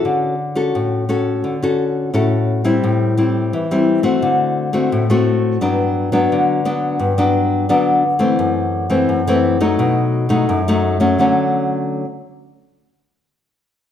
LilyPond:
\new Staff \with { instrumentName = "Nylon-string guitar" } { \time 4/4 \key d \major \tempo 4 = 86 << { <cis' fis' a'>8 r16 <cis' fis' a'>8. <cis' fis' a'>8. <cis' fis' a'>8. <cis' fis' a'>8. <g c' e'>16~ | <g c' e'>8 <g c' e'>8. <g c' e'>8 <a c' fis'>4 <a c' fis'>8 <a c' fis'>8. | <fis b d'>8. <fis b d'>8. <fis b d'>8. <fis b d'>8. <fis b d'>8 r16 <e a c'>16~ | <e a c'>8. <e a c'>8 <e a c'>8 <fis a ees'>4 <fis a dis'>8 <fis a dis'>8 <fis a cis'>16~ |
<fis a cis'>8. r2. r16 | } \\ { d4 a,4 d4 a,4 | a,4 e4 d4 a,4 | g,4 d4 g,4 d4 | fis,4 fis,4 b,4 fis,4 |
<d fis a cis'>8 r2. r8 | } >> }